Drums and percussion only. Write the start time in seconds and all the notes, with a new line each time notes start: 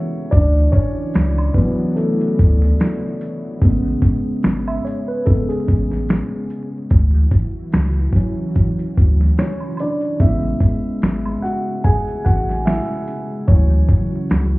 0.32 kick, closed hi-hat, shaker
0.73 kick, closed hi-hat, shaker
1.14 finger snap, snare, closed hi-hat, shaker
1.38 high woodblock
1.54 kick, closed hi-hat, shaker
1.97 closed hi-hat, shaker
2.21 closed hi-hat
2.37 kick, closed hi-hat, shaker
2.62 snare
2.80 finger snap, snare, closed hi-hat, shaker
3.20 closed hi-hat, shaker
3.62 kick, closed hi-hat, shaker
4.02 kick, closed hi-hat, shaker
4.43 finger snap, snare, closed hi-hat, shaker
4.68 high woodblock
4.87 closed hi-hat
5.26 kick, closed hi-hat, shaker
5.50 closed hi-hat
5.67 kick, closed hi-hat, shaker
5.91 snare
6.09 finger snap, snare, closed hi-hat, shaker
6.49 closed hi-hat, shaker
6.90 kick, closed hi-hat, shaker
7.31 kick, closed hi-hat, shaker
7.72 finger snap, snare, closed hi-hat, shaker
8.13 kick, closed hi-hat
8.55 kick, closed hi-hat, shaker
8.79 closed hi-hat
8.96 kick, closed hi-hat, shaker
9.21 snare
9.38 finger snap, snare, closed hi-hat, shaker
9.60 high woodblock
9.77 closed hi-hat, high woodblock, shaker
10.01 closed hi-hat
10.19 kick, closed hi-hat, shaker
10.60 kick, closed hi-hat, shaker
11.02 finger snap, snare, closed hi-hat, shaker
11.25 high woodblock
11.43 closed hi-hat, shaker
11.84 kick, closed hi-hat, shaker
12.08 closed hi-hat
12.25 kick, closed hi-hat, shaker
12.49 snare
12.66 finger snap, snare, closed hi-hat, shaker
13.07 closed hi-hat, shaker
13.48 kick, closed hi-hat
13.89 kick, closed hi-hat
14.30 finger snap, snare, closed hi-hat